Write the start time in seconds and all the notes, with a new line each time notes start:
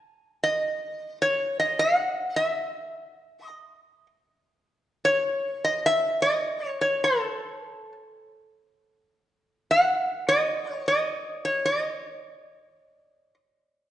0.44 D#5
1.22 C#5
1.60 D#5
1.79 F#5
2.36 E5
3.45 D#5
5.05 C#5
5.65 D#5
5.86 E5
6.22 D#5
6.68 C#5
6.81 C#5
7.04 A4
9.71 F#5
10.29 D#5
10.74 C#5
10.88 D#5
11.45 C#5
11.65 D#5